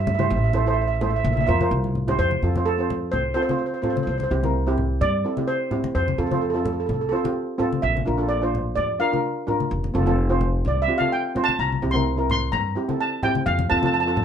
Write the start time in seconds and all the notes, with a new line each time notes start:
Already playing: G2
0.07 E5, high conga, low conga
0.14 E5
0.19 E4 G4 C5, high conga
0.23 E5
0.30 A1 E5
0.37 E5
0.44 E5
0.50 E5, low conga
0.54 E4 A4 C5 E5
0.66 E4 A4 C5 E5
0.74 E5
0.82 E5
0.88 E5
0.95 E5
1.01 E4 A4 C5 E5, low conga
1.10 E5
1.16 E5
1.24 A#1 E5, high conga
1.33 E5
1.37 E5, high conga
1.47 F2 F4 A#4 C5 E5, low conga
1.61 F4 A#4 C5, high conga
1.71 C2
1.84 high conga
1.95 low conga
2.08 E4 G4 C5, low conga
2.19 F2 C5
2.31 high conga
2.42 F2 C4 F4 A4
2.56 C4 F4 C5, high conga
2.66 A4
2.78 C4 F4 C5
2.90 low conga
3.12 C2 C5, low conga
3.34 C4 F4 A4 C5
3.42 C5
3.49 C4 F4 C5, high conga
3.59 C5
3.66 C5
3.74 C5
3.82 C4 F4 A4 C5, low conga
3.90 C5
3.96 C5, high conga
4.03 C2 C5
4.09 C5
4.18 C5, high conga
4.23 C5
4.30 C2 C4 E4 G4 C5
4.43 C4 E4 A#4, high conga
4.67 C4 E4 G4
4.78 low conga
5.01 G2 D5, low conga
5.24 C4 E4 A4
5.37 C4 E4 G4, high conga
5.48 C5
5.71 C4 E4 G4, low conga
5.84 high conga
5.95 F2 C5
6.08 high conga
6.18 F2 C4 F4 A4
6.27 A4
6.31 C4 F4 C5, high conga
6.35 A4
6.42 A4
6.50 C4 A4
6.55 F4 A4
6.65 A4, low conga
6.73 A4
6.80 A4
6.86 C2 A4, low conga
6.93 A4
7.01 A4
7.09 C4 F4 A4 C5
7.16 A4
7.24 C4 F4 G4, high conga
7.58 C4 F4 A4, low conga
7.73 high conga
7.82 A#1 E5
7.97 high conga
8.05 A#1 D4 F4 A#4
8.18 D4 F4 A4
8.28 D5
8.42 D4 F4 C5
8.55 low conga
8.76 F2 D5, low conga
8.99 D4 F4 A#4 F5
9.12 D4 F4 A#4, high conga
9.47 D4 F4 A#4, low conga
9.60 high conga
9.71 F1
9.84 high conga
9.94 F1 C4 F4 A4
10.06 C4 F4 A4, high conga
10.29 C4 F4 C5
10.41 low conga
10.65 C2 D5, low conga
10.82 E5
10.88 C4 F4 G4
10.98 C4 F4 A4 F5, high conga
11.12 G5
11.35 C4 F4 C5, low conga
11.44 A5
11.49 high conga
11.59 C2 A#5
11.72 high conga
11.82 C2 C4 E4 G4
11.91 C4 E4 C6
11.95 A#4, high conga
12.17 C4 E4 A#4
12.30 C6, low conga
12.52 G2 A#5, low conga
12.76 C4 E4 G4
12.89 C4 E4 A4, high conga
13.01 A5
13.23 C4 E4 G4 G5, low conga
13.35 high conga
13.46 F2 F5
13.59 high conga
13.70 F2 C4 F4 A4 A5
13.78 C4 A5
13.83 F4 A4 A5, high conga
13.94 A5
14.00 A5
14.06 C4 F4 A4 A5
14.16 A5, low conga